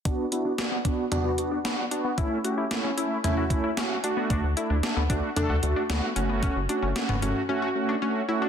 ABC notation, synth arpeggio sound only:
X:1
M:4/4
L:1/16
Q:1/4=113
K:Bm
V:1 name="Synth arpeggio sound"
D2 E D2 B, D2 D F2 D B,2 D B, | E2 F E2 C E2 E F2 E C2 D B, | D2 E D2 B, D2 D F2 D B,2 C B, | C2 D C2 B, C2 C F2 D C2 E D |]